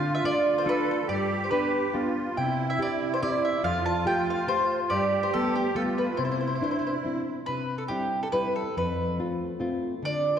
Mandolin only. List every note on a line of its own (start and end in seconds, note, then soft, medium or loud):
0.00 0.13 F5 medium
0.15 0.23 E5 medium
0.25 0.53 D5 loud
0.58 0.66 C5 medium
0.69 0.87 B4 medium
0.91 0.96 A4 medium
1.09 1.41 D5 medium
1.44 1.50 C5 soft
1.51 1.90 B4 medium
2.37 2.67 G5 medium
2.70 2.79 E5 medium
2.82 3.11 D5 medium
3.14 3.22 C5 medium
3.23 3.42 D5 loud
3.45 3.63 E5 medium
3.64 3.85 F5 loud
3.86 4.06 A5 medium
4.07 4.27 G5 medium
4.30 4.48 F5 medium
4.48 4.78 C5 loud
4.90 5.20 D5 medium
5.23 5.32 C5 medium
5.34 5.54 A4 medium
5.55 5.76 G4 medium
5.76 5.82 A4 medium
5.98 6.17 B4 medium
6.17 6.23 C5 medium
6.25 6.30 C5 soft
6.31 6.39 C5 soft
6.41 6.46 C5 soft
6.47 6.54 C5 soft
6.55 6.62 C5 soft
6.63 6.70 C5 medium
6.71 6.78 C5 soft
6.79 6.85 C5 soft
6.87 6.93 C5 soft
7.46 7.78 B4 medium
7.78 7.83 A4 medium
7.88 8.20 G4 medium
8.23 8.27 A4 medium
8.32 8.53 B4 medium
8.56 8.74 A4 medium
8.78 9.16 B4 medium
10.05 10.34 D5 loud